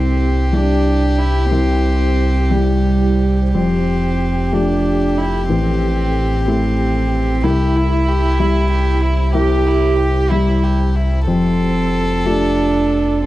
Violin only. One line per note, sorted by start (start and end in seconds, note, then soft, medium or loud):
0.00 3.48 G4 medium
3.54 7.39 G4 soft
7.44 7.77 G4 soft
7.76 8.10 E4 soft
8.08 8.40 G4 soft
8.39 8.70 E4 soft
8.71 9.02 G4 soft
9.01 9.34 E4 soft
9.33 9.68 G4 medium
9.66 9.98 E4 soft
9.99 10.33 G4 soft
10.31 10.65 E4 medium
10.63 10.97 G4 soft
10.95 11.27 E4 soft
11.28 13.22 A4 medium